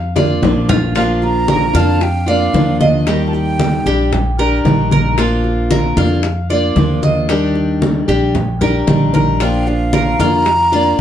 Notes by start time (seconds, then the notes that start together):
Already playing: F2 F5
0.16 A#3 D4 F4 D5, high bongo, high conga
0.42 A#1 F3 A#3 D4 F4, low bongo, low conga
0.69 F4, low bongo, low conga
0.95 F3 A#3 D4 F4 F5, high bongo, high conga
1.22 F4 A#5, high bongo, high conga
1.48 A#4, high bongo, high conga
1.73 F2 A#3 D4 F4 F5 A5, high conga
2.01 D4 G5, muted steel-string acoustic guitar stroke, high bongo, high conga
2.26 A#3 D4 F4 D5 F5, high bongo, high conga
2.53 D#2 F3 A#3 D4 F4, high bongo, low bongo, high conga
2.81 D4 D#5 F5, high bongo, high conga
3.07 D#3 G3 A#3 G4 D#5, high bongo
3.27 F4 A5
3.33 D#4 G5, high bongo, high conga
3.59 high bongo, high conga
3.86 A#1 G3 D4 G4, high conga
4.12 muted steel-string acoustic guitar stroke, high bongo, high conga, low conga
4.39 G3 D4 G4 A#4, high bongo, high conga
4.65 A#1 D#3 G3 D4 G4, high bongo, low bongo, high conga
4.91 A#4, high bongo, high conga
5.17 F3 A#3 D4 F4, high bongo, high conga
5.44 high bongo, high conga
5.71 A#4, high bongo, high conga
5.97 F2 A#3 D4 F4 F5, high conga
6.23 muted steel-string acoustic guitar stroke, high bongo, high conga
6.50 A#3 D4 F4 D5, high bongo, high conga
6.76 D#2 F3 A#3 D4 F4, high bongo, low bongo, high conga
7.02 D#5, high bongo, high conga
7.29 D#3 G3 D4 G4, high bongo, high conga
7.55 high bongo, high conga
7.82 high bongo, high conga
8.08 A#1 G3 D4 G4, high conga
8.35 muted steel-string acoustic guitar stroke, high bongo, high conga, low conga
8.61 G3 D4 G4 A#4, low bongo, high conga, low conga
8.87 A#1 D#3 G3 D4 G4, low bongo, high conga
9.14 A#4, low bongo, high conga
9.40 F3 A#3 D4 F4 G5, high bongo, high conga
9.67 D4 F5, high bongo, high conga
9.93 A#4, high bongo, high conga
10.19 F2 A#3 D4 F4 F5 A#5, high conga
10.46 muted steel-string acoustic guitar stroke, high bongo, high conga
10.72 A#3 D4 F4 D5, high bongo, high conga